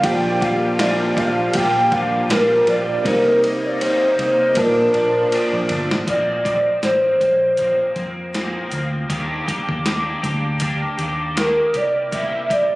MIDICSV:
0, 0, Header, 1, 7, 480
1, 0, Start_track
1, 0, Key_signature, -2, "major"
1, 0, Tempo, 755668
1, 22, Time_signature, 4, 2, 24, 8
1, 8101, End_track
2, 0, Start_track
2, 0, Title_t, "Soft synth lead"
2, 0, Program_c, 0, 80
2, 27, Note_on_c, 0, 79, 118
2, 266, Note_on_c, 0, 77, 99
2, 275, Note_off_c, 0, 79, 0
2, 509, Note_on_c, 0, 74, 103
2, 519, Note_off_c, 0, 77, 0
2, 748, Note_on_c, 0, 77, 105
2, 757, Note_off_c, 0, 74, 0
2, 984, Note_off_c, 0, 77, 0
2, 988, Note_on_c, 0, 79, 111
2, 1221, Note_on_c, 0, 77, 106
2, 1231, Note_off_c, 0, 79, 0
2, 1460, Note_off_c, 0, 77, 0
2, 1464, Note_on_c, 0, 70, 97
2, 1703, Note_on_c, 0, 74, 99
2, 1713, Note_off_c, 0, 70, 0
2, 1829, Note_off_c, 0, 74, 0
2, 1833, Note_on_c, 0, 74, 87
2, 1942, Note_on_c, 0, 70, 96
2, 1952, Note_off_c, 0, 74, 0
2, 2072, Note_off_c, 0, 70, 0
2, 2078, Note_on_c, 0, 70, 83
2, 2166, Note_off_c, 0, 70, 0
2, 2316, Note_on_c, 0, 74, 102
2, 2413, Note_off_c, 0, 74, 0
2, 2425, Note_on_c, 0, 72, 102
2, 2905, Note_on_c, 0, 70, 93
2, 2915, Note_off_c, 0, 72, 0
2, 3620, Note_off_c, 0, 70, 0
2, 3863, Note_on_c, 0, 74, 123
2, 4314, Note_off_c, 0, 74, 0
2, 4343, Note_on_c, 0, 72, 102
2, 5516, Note_off_c, 0, 72, 0
2, 7235, Note_on_c, 0, 70, 95
2, 7472, Note_on_c, 0, 74, 95
2, 7482, Note_off_c, 0, 70, 0
2, 7707, Note_off_c, 0, 74, 0
2, 7711, Note_on_c, 0, 76, 111
2, 7952, Note_on_c, 0, 74, 100
2, 7961, Note_off_c, 0, 76, 0
2, 8101, Note_off_c, 0, 74, 0
2, 8101, End_track
3, 0, Start_track
3, 0, Title_t, "Tine electric piano"
3, 0, Program_c, 1, 4
3, 0, Control_c, 1, 64, 127
3, 8, Note_on_c, 1, 58, 72
3, 15, Note_on_c, 1, 62, 64
3, 23, Note_on_c, 1, 65, 69
3, 30, Note_on_c, 1, 67, 65
3, 31, Control_c, 1, 64, 0
3, 40, Note_on_c, 1, 72, 60
3, 76, Note_off_c, 1, 72, 0
3, 81, Note_on_c, 1, 74, 83
3, 142, Control_c, 1, 64, 127
3, 1905, Note_off_c, 1, 58, 0
3, 1909, Note_off_c, 1, 62, 0
3, 1913, Note_off_c, 1, 65, 0
3, 1917, Note_off_c, 1, 67, 0
3, 1926, Note_on_c, 1, 58, 78
3, 1935, Note_on_c, 1, 60, 68
3, 1942, Note_off_c, 1, 74, 0
3, 1942, Note_on_c, 1, 63, 69
3, 1947, Control_c, 1, 64, 0
3, 1950, Note_on_c, 1, 67, 65
3, 1959, Note_on_c, 1, 72, 73
3, 2051, Control_c, 1, 64, 127
3, 2871, Note_off_c, 1, 58, 0
3, 2876, Note_off_c, 1, 60, 0
3, 2880, Note_off_c, 1, 63, 0
3, 2882, Note_on_c, 1, 58, 65
3, 2884, Note_off_c, 1, 67, 0
3, 2888, Note_off_c, 1, 72, 0
3, 2889, Note_on_c, 1, 62, 62
3, 2900, Note_on_c, 1, 65, 60
3, 2905, Control_c, 1, 64, 0
3, 2906, Note_on_c, 1, 81, 61
3, 2913, Note_on_c, 1, 74, 66
3, 3006, Control_c, 1, 64, 127
3, 3830, Note_off_c, 1, 58, 0
3, 3833, Note_off_c, 1, 62, 0
3, 3839, Note_off_c, 1, 65, 0
3, 3842, Note_off_c, 1, 81, 0
3, 3845, Note_off_c, 1, 74, 0
3, 3864, Control_c, 1, 64, 0
3, 8101, End_track
4, 0, Start_track
4, 0, Title_t, "Clean electric guitar"
4, 0, Program_c, 2, 27
4, 20, Note_on_c, 2, 46, 82
4, 26, Note_on_c, 2, 55, 88
4, 32, Note_on_c, 2, 62, 89
4, 37, Note_on_c, 2, 65, 88
4, 251, Note_off_c, 2, 65, 0
4, 258, Note_on_c, 2, 65, 57
4, 260, Note_off_c, 2, 46, 0
4, 262, Note_off_c, 2, 62, 0
4, 263, Note_off_c, 2, 55, 0
4, 270, Note_on_c, 2, 62, 50
4, 281, Note_on_c, 2, 55, 53
4, 499, Note_off_c, 2, 55, 0
4, 499, Note_off_c, 2, 65, 0
4, 501, Note_on_c, 2, 46, 88
4, 505, Note_off_c, 2, 62, 0
4, 507, Note_on_c, 2, 55, 90
4, 513, Note_on_c, 2, 62, 98
4, 515, Note_on_c, 2, 65, 95
4, 733, Note_off_c, 2, 65, 0
4, 740, Note_off_c, 2, 46, 0
4, 741, Note_on_c, 2, 65, 60
4, 743, Note_off_c, 2, 55, 0
4, 744, Note_off_c, 2, 62, 0
4, 752, Note_on_c, 2, 62, 51
4, 762, Note_on_c, 2, 55, 52
4, 976, Note_on_c, 2, 46, 72
4, 977, Note_off_c, 2, 55, 0
4, 980, Note_off_c, 2, 65, 0
4, 984, Note_off_c, 2, 62, 0
4, 984, Note_on_c, 2, 55, 65
4, 992, Note_on_c, 2, 62, 66
4, 1000, Note_on_c, 2, 65, 77
4, 1210, Note_off_c, 2, 65, 0
4, 1217, Note_off_c, 2, 46, 0
4, 1217, Note_on_c, 2, 65, 65
4, 1222, Note_off_c, 2, 55, 0
4, 1223, Note_off_c, 2, 62, 0
4, 1231, Note_on_c, 2, 62, 54
4, 1241, Note_on_c, 2, 55, 50
4, 1458, Note_off_c, 2, 55, 0
4, 1458, Note_off_c, 2, 65, 0
4, 1459, Note_on_c, 2, 46, 83
4, 1462, Note_off_c, 2, 62, 0
4, 1466, Note_on_c, 2, 55, 80
4, 1470, Note_on_c, 2, 62, 97
4, 1476, Note_on_c, 2, 65, 93
4, 1686, Note_off_c, 2, 65, 0
4, 1694, Note_on_c, 2, 65, 56
4, 1699, Note_off_c, 2, 46, 0
4, 1701, Note_off_c, 2, 62, 0
4, 1702, Note_off_c, 2, 55, 0
4, 1709, Note_on_c, 2, 62, 52
4, 1718, Note_on_c, 2, 55, 47
4, 1933, Note_on_c, 2, 48, 85
4, 1934, Note_off_c, 2, 55, 0
4, 1936, Note_off_c, 2, 65, 0
4, 1941, Note_on_c, 2, 55, 91
4, 1943, Note_off_c, 2, 62, 0
4, 1946, Note_on_c, 2, 58, 84
4, 1949, Note_on_c, 2, 63, 96
4, 2165, Note_off_c, 2, 63, 0
4, 2173, Note_on_c, 2, 63, 56
4, 2175, Note_off_c, 2, 48, 0
4, 2177, Note_off_c, 2, 58, 0
4, 2179, Note_off_c, 2, 55, 0
4, 2185, Note_on_c, 2, 58, 48
4, 2198, Note_on_c, 2, 55, 49
4, 2413, Note_off_c, 2, 55, 0
4, 2415, Note_off_c, 2, 63, 0
4, 2415, Note_on_c, 2, 48, 81
4, 2416, Note_off_c, 2, 58, 0
4, 2420, Note_on_c, 2, 55, 87
4, 2424, Note_on_c, 2, 58, 96
4, 2430, Note_on_c, 2, 63, 104
4, 2644, Note_off_c, 2, 63, 0
4, 2651, Note_on_c, 2, 63, 58
4, 2656, Note_off_c, 2, 48, 0
4, 2658, Note_off_c, 2, 55, 0
4, 2658, Note_off_c, 2, 58, 0
4, 2665, Note_on_c, 2, 58, 57
4, 2677, Note_on_c, 2, 55, 45
4, 2890, Note_on_c, 2, 46, 66
4, 2894, Note_off_c, 2, 63, 0
4, 2896, Note_off_c, 2, 55, 0
4, 2899, Note_on_c, 2, 53, 58
4, 2901, Note_off_c, 2, 58, 0
4, 2914, Note_on_c, 2, 62, 65
4, 3121, Note_off_c, 2, 62, 0
4, 3129, Note_on_c, 2, 62, 61
4, 3133, Note_off_c, 2, 46, 0
4, 3137, Note_off_c, 2, 53, 0
4, 3152, Note_on_c, 2, 53, 50
4, 3372, Note_off_c, 2, 62, 0
4, 3374, Note_off_c, 2, 53, 0
4, 3376, Note_on_c, 2, 46, 88
4, 3381, Note_on_c, 2, 53, 87
4, 3391, Note_on_c, 2, 62, 99
4, 3603, Note_off_c, 2, 62, 0
4, 3611, Note_on_c, 2, 62, 70
4, 3616, Note_off_c, 2, 46, 0
4, 3619, Note_off_c, 2, 53, 0
4, 3624, Note_on_c, 2, 57, 53
4, 3635, Note_on_c, 2, 53, 50
4, 3854, Note_off_c, 2, 62, 0
4, 3855, Note_off_c, 2, 53, 0
4, 3856, Note_on_c, 2, 46, 74
4, 3860, Note_off_c, 2, 57, 0
4, 3862, Note_on_c, 2, 53, 65
4, 3868, Note_on_c, 2, 58, 81
4, 3871, Note_on_c, 2, 60, 74
4, 4082, Note_off_c, 2, 60, 0
4, 4090, Note_on_c, 2, 60, 56
4, 4095, Note_off_c, 2, 58, 0
4, 4096, Note_off_c, 2, 46, 0
4, 4099, Note_off_c, 2, 53, 0
4, 4103, Note_on_c, 2, 58, 43
4, 4113, Note_on_c, 2, 53, 44
4, 4332, Note_off_c, 2, 53, 0
4, 4333, Note_off_c, 2, 60, 0
4, 4336, Note_off_c, 2, 58, 0
4, 4340, Note_on_c, 2, 53, 72
4, 4344, Note_on_c, 2, 58, 71
4, 4349, Note_on_c, 2, 60, 83
4, 4568, Note_off_c, 2, 60, 0
4, 4575, Note_on_c, 2, 60, 47
4, 4578, Note_off_c, 2, 53, 0
4, 4580, Note_off_c, 2, 58, 0
4, 4588, Note_on_c, 2, 58, 42
4, 4597, Note_on_c, 2, 53, 42
4, 4812, Note_on_c, 2, 46, 53
4, 4814, Note_off_c, 2, 53, 0
4, 4816, Note_off_c, 2, 60, 0
4, 4821, Note_on_c, 2, 53, 61
4, 4823, Note_off_c, 2, 58, 0
4, 4829, Note_on_c, 2, 58, 58
4, 4838, Note_on_c, 2, 60, 54
4, 5042, Note_off_c, 2, 60, 0
4, 5049, Note_on_c, 2, 60, 52
4, 5055, Note_off_c, 2, 46, 0
4, 5056, Note_off_c, 2, 58, 0
4, 5059, Note_off_c, 2, 53, 0
4, 5063, Note_on_c, 2, 58, 47
4, 5074, Note_on_c, 2, 53, 45
4, 5292, Note_off_c, 2, 53, 0
4, 5294, Note_off_c, 2, 60, 0
4, 5294, Note_on_c, 2, 46, 72
4, 5300, Note_on_c, 2, 53, 87
4, 5301, Note_off_c, 2, 58, 0
4, 5307, Note_on_c, 2, 58, 90
4, 5312, Note_on_c, 2, 60, 95
4, 5522, Note_off_c, 2, 60, 0
4, 5530, Note_on_c, 2, 60, 55
4, 5536, Note_off_c, 2, 46, 0
4, 5537, Note_off_c, 2, 58, 0
4, 5539, Note_off_c, 2, 53, 0
4, 5544, Note_on_c, 2, 58, 49
4, 5555, Note_on_c, 2, 53, 50
4, 5770, Note_off_c, 2, 53, 0
4, 5772, Note_off_c, 2, 58, 0
4, 5772, Note_on_c, 2, 51, 89
4, 5774, Note_off_c, 2, 60, 0
4, 5779, Note_on_c, 2, 58, 89
4, 5784, Note_on_c, 2, 62, 79
4, 5788, Note_on_c, 2, 67, 78
4, 6003, Note_off_c, 2, 67, 0
4, 6011, Note_on_c, 2, 67, 58
4, 6016, Note_off_c, 2, 51, 0
4, 6016, Note_off_c, 2, 62, 0
4, 6019, Note_off_c, 2, 58, 0
4, 6024, Note_on_c, 2, 62, 58
4, 6034, Note_on_c, 2, 58, 47
4, 6253, Note_off_c, 2, 58, 0
4, 6254, Note_on_c, 2, 51, 78
4, 6255, Note_off_c, 2, 67, 0
4, 6258, Note_off_c, 2, 62, 0
4, 6261, Note_on_c, 2, 58, 82
4, 6266, Note_on_c, 2, 62, 91
4, 6271, Note_on_c, 2, 67, 84
4, 6486, Note_off_c, 2, 67, 0
4, 6494, Note_on_c, 2, 67, 60
4, 6497, Note_off_c, 2, 51, 0
4, 6500, Note_off_c, 2, 58, 0
4, 6501, Note_off_c, 2, 62, 0
4, 6509, Note_on_c, 2, 62, 52
4, 6518, Note_on_c, 2, 58, 48
4, 6734, Note_off_c, 2, 58, 0
4, 6737, Note_off_c, 2, 67, 0
4, 6740, Note_off_c, 2, 62, 0
4, 6741, Note_on_c, 2, 58, 58
4, 6748, Note_on_c, 2, 62, 70
4, 6755, Note_on_c, 2, 67, 65
4, 6963, Note_off_c, 2, 67, 0
4, 6971, Note_on_c, 2, 67, 53
4, 6977, Note_off_c, 2, 62, 0
4, 6981, Note_off_c, 2, 58, 0
4, 6984, Note_on_c, 2, 62, 49
4, 6997, Note_on_c, 2, 58, 49
4, 7213, Note_off_c, 2, 58, 0
4, 7213, Note_on_c, 2, 51, 82
4, 7216, Note_off_c, 2, 67, 0
4, 7219, Note_off_c, 2, 62, 0
4, 7221, Note_on_c, 2, 58, 81
4, 7226, Note_on_c, 2, 62, 86
4, 7231, Note_on_c, 2, 67, 85
4, 7444, Note_off_c, 2, 67, 0
4, 7451, Note_on_c, 2, 67, 47
4, 7457, Note_off_c, 2, 51, 0
4, 7460, Note_off_c, 2, 62, 0
4, 7461, Note_off_c, 2, 58, 0
4, 7463, Note_on_c, 2, 64, 39
4, 7476, Note_on_c, 2, 58, 38
4, 7694, Note_off_c, 2, 58, 0
4, 7695, Note_on_c, 2, 48, 68
4, 7696, Note_off_c, 2, 67, 0
4, 7700, Note_off_c, 2, 64, 0
4, 7701, Note_on_c, 2, 58, 84
4, 7708, Note_on_c, 2, 64, 83
4, 7712, Note_on_c, 2, 67, 78
4, 7924, Note_off_c, 2, 67, 0
4, 7931, Note_on_c, 2, 67, 52
4, 7938, Note_off_c, 2, 48, 0
4, 7938, Note_off_c, 2, 64, 0
4, 7941, Note_off_c, 2, 58, 0
4, 7945, Note_on_c, 2, 64, 46
4, 7957, Note_on_c, 2, 58, 38
4, 8101, Note_off_c, 2, 58, 0
4, 8101, Note_off_c, 2, 64, 0
4, 8101, Note_off_c, 2, 67, 0
4, 8101, End_track
5, 0, Start_track
5, 0, Title_t, "Analog synth pad"
5, 0, Program_c, 3, 89
5, 0, Note_on_c, 3, 58, 65
5, 0, Note_on_c, 3, 67, 89
5, 23, Note_on_c, 3, 53, 82
5, 1914, Note_off_c, 3, 67, 0
5, 1919, Note_off_c, 3, 53, 0
5, 1943, Note_on_c, 3, 63, 91
5, 1944, Note_on_c, 3, 48, 84
5, 2873, Note_off_c, 3, 58, 0
5, 2889, Note_off_c, 3, 63, 0
5, 2890, Note_off_c, 3, 48, 0
5, 2900, Note_on_c, 3, 53, 77
5, 2903, Note_on_c, 3, 46, 80
5, 2904, Note_on_c, 3, 62, 96
5, 3849, Note_off_c, 3, 53, 0
5, 3850, Note_off_c, 3, 46, 0
5, 3850, Note_off_c, 3, 62, 0
5, 8101, End_track
6, 0, Start_track
6, 0, Title_t, "Fingered electric bass"
6, 0, Program_c, 4, 33
6, 22, Note_on_c, 4, 34, 113
6, 715, Note_off_c, 4, 34, 0
6, 742, Note_on_c, 4, 34, 85
6, 933, Note_off_c, 4, 34, 0
6, 985, Note_on_c, 4, 46, 120
6, 1220, Note_on_c, 4, 34, 80
6, 1229, Note_off_c, 4, 46, 0
6, 1411, Note_off_c, 4, 34, 0
6, 1458, Note_on_c, 4, 34, 92
6, 1650, Note_off_c, 4, 34, 0
6, 1699, Note_on_c, 4, 34, 90
6, 1890, Note_off_c, 4, 34, 0
6, 1938, Note_on_c, 4, 36, 123
6, 2632, Note_off_c, 4, 36, 0
6, 2659, Note_on_c, 4, 36, 89
6, 2850, Note_off_c, 4, 36, 0
6, 2902, Note_on_c, 4, 46, 110
6, 3091, Note_off_c, 4, 46, 0
6, 3138, Note_on_c, 4, 46, 94
6, 3329, Note_off_c, 4, 46, 0
6, 3512, Note_on_c, 4, 34, 83
6, 3597, Note_off_c, 4, 34, 0
6, 3619, Note_on_c, 4, 31, 113
6, 3724, Note_off_c, 4, 31, 0
6, 3748, Note_on_c, 4, 33, 94
6, 3834, Note_off_c, 4, 33, 0
6, 3857, Note_on_c, 4, 34, 97
6, 4241, Note_off_c, 4, 34, 0
6, 4341, Note_on_c, 4, 33, 75
6, 4531, Note_off_c, 4, 33, 0
6, 4579, Note_on_c, 4, 34, 88
6, 4962, Note_off_c, 4, 34, 0
6, 5056, Note_on_c, 4, 41, 84
6, 5441, Note_off_c, 4, 41, 0
6, 5539, Note_on_c, 4, 38, 81
6, 5731, Note_off_c, 4, 38, 0
6, 5779, Note_on_c, 4, 39, 98
6, 5971, Note_off_c, 4, 39, 0
6, 6153, Note_on_c, 4, 39, 76
6, 6431, Note_off_c, 4, 39, 0
6, 6501, Note_on_c, 4, 38, 81
6, 6885, Note_off_c, 4, 38, 0
6, 6979, Note_on_c, 4, 39, 86
6, 7364, Note_off_c, 4, 39, 0
6, 7461, Note_on_c, 4, 36, 84
6, 8037, Note_off_c, 4, 36, 0
6, 8101, End_track
7, 0, Start_track
7, 0, Title_t, "Drums"
7, 22, Note_on_c, 9, 36, 120
7, 23, Note_on_c, 9, 51, 82
7, 86, Note_off_c, 9, 36, 0
7, 86, Note_off_c, 9, 51, 0
7, 263, Note_on_c, 9, 36, 98
7, 268, Note_on_c, 9, 51, 63
7, 327, Note_off_c, 9, 36, 0
7, 331, Note_off_c, 9, 51, 0
7, 503, Note_on_c, 9, 38, 106
7, 506, Note_on_c, 9, 51, 81
7, 567, Note_off_c, 9, 38, 0
7, 569, Note_off_c, 9, 51, 0
7, 742, Note_on_c, 9, 36, 95
7, 747, Note_on_c, 9, 51, 63
7, 806, Note_off_c, 9, 36, 0
7, 810, Note_off_c, 9, 51, 0
7, 975, Note_on_c, 9, 51, 79
7, 986, Note_on_c, 9, 36, 97
7, 1039, Note_off_c, 9, 51, 0
7, 1049, Note_off_c, 9, 36, 0
7, 1219, Note_on_c, 9, 36, 96
7, 1219, Note_on_c, 9, 51, 44
7, 1283, Note_off_c, 9, 36, 0
7, 1283, Note_off_c, 9, 51, 0
7, 1462, Note_on_c, 9, 51, 70
7, 1466, Note_on_c, 9, 38, 126
7, 1526, Note_off_c, 9, 51, 0
7, 1530, Note_off_c, 9, 38, 0
7, 1697, Note_on_c, 9, 51, 62
7, 1760, Note_off_c, 9, 51, 0
7, 1939, Note_on_c, 9, 36, 119
7, 1941, Note_on_c, 9, 51, 80
7, 2002, Note_off_c, 9, 36, 0
7, 2005, Note_off_c, 9, 51, 0
7, 2183, Note_on_c, 9, 51, 65
7, 2247, Note_off_c, 9, 51, 0
7, 2422, Note_on_c, 9, 51, 80
7, 2485, Note_off_c, 9, 51, 0
7, 2662, Note_on_c, 9, 51, 61
7, 2725, Note_off_c, 9, 51, 0
7, 2892, Note_on_c, 9, 51, 73
7, 2902, Note_on_c, 9, 36, 90
7, 2955, Note_off_c, 9, 51, 0
7, 2965, Note_off_c, 9, 36, 0
7, 3138, Note_on_c, 9, 51, 43
7, 3202, Note_off_c, 9, 51, 0
7, 3381, Note_on_c, 9, 51, 64
7, 3444, Note_off_c, 9, 51, 0
7, 3615, Note_on_c, 9, 51, 63
7, 3679, Note_off_c, 9, 51, 0
7, 3756, Note_on_c, 9, 38, 109
7, 3820, Note_off_c, 9, 38, 0
7, 3857, Note_on_c, 9, 36, 103
7, 3860, Note_on_c, 9, 42, 83
7, 3921, Note_off_c, 9, 36, 0
7, 3923, Note_off_c, 9, 42, 0
7, 4098, Note_on_c, 9, 36, 88
7, 4102, Note_on_c, 9, 42, 57
7, 4162, Note_off_c, 9, 36, 0
7, 4166, Note_off_c, 9, 42, 0
7, 4338, Note_on_c, 9, 38, 91
7, 4340, Note_on_c, 9, 42, 73
7, 4401, Note_off_c, 9, 38, 0
7, 4404, Note_off_c, 9, 42, 0
7, 4578, Note_on_c, 9, 36, 93
7, 4580, Note_on_c, 9, 42, 64
7, 4642, Note_off_c, 9, 36, 0
7, 4644, Note_off_c, 9, 42, 0
7, 4811, Note_on_c, 9, 42, 79
7, 4822, Note_on_c, 9, 36, 81
7, 4874, Note_off_c, 9, 42, 0
7, 4886, Note_off_c, 9, 36, 0
7, 5055, Note_on_c, 9, 42, 44
7, 5057, Note_on_c, 9, 36, 71
7, 5119, Note_off_c, 9, 42, 0
7, 5120, Note_off_c, 9, 36, 0
7, 5300, Note_on_c, 9, 42, 71
7, 5304, Note_on_c, 9, 38, 99
7, 5364, Note_off_c, 9, 42, 0
7, 5368, Note_off_c, 9, 38, 0
7, 5536, Note_on_c, 9, 42, 64
7, 5599, Note_off_c, 9, 42, 0
7, 5779, Note_on_c, 9, 36, 101
7, 5780, Note_on_c, 9, 42, 79
7, 5842, Note_off_c, 9, 36, 0
7, 5844, Note_off_c, 9, 42, 0
7, 6021, Note_on_c, 9, 36, 90
7, 6025, Note_on_c, 9, 42, 64
7, 6085, Note_off_c, 9, 36, 0
7, 6088, Note_off_c, 9, 42, 0
7, 6153, Note_on_c, 9, 36, 72
7, 6217, Note_off_c, 9, 36, 0
7, 6261, Note_on_c, 9, 38, 96
7, 6264, Note_on_c, 9, 42, 80
7, 6325, Note_off_c, 9, 38, 0
7, 6327, Note_off_c, 9, 42, 0
7, 6501, Note_on_c, 9, 36, 89
7, 6503, Note_on_c, 9, 42, 69
7, 6564, Note_off_c, 9, 36, 0
7, 6567, Note_off_c, 9, 42, 0
7, 6732, Note_on_c, 9, 42, 84
7, 6744, Note_on_c, 9, 36, 76
7, 6796, Note_off_c, 9, 42, 0
7, 6807, Note_off_c, 9, 36, 0
7, 6979, Note_on_c, 9, 42, 40
7, 7042, Note_off_c, 9, 42, 0
7, 7222, Note_on_c, 9, 42, 72
7, 7226, Note_on_c, 9, 38, 99
7, 7286, Note_off_c, 9, 42, 0
7, 7289, Note_off_c, 9, 38, 0
7, 7457, Note_on_c, 9, 42, 59
7, 7521, Note_off_c, 9, 42, 0
7, 7701, Note_on_c, 9, 36, 98
7, 7702, Note_on_c, 9, 42, 84
7, 7764, Note_off_c, 9, 36, 0
7, 7765, Note_off_c, 9, 42, 0
7, 7942, Note_on_c, 9, 36, 88
7, 7945, Note_on_c, 9, 42, 66
7, 8005, Note_off_c, 9, 36, 0
7, 8009, Note_off_c, 9, 42, 0
7, 8101, End_track
0, 0, End_of_file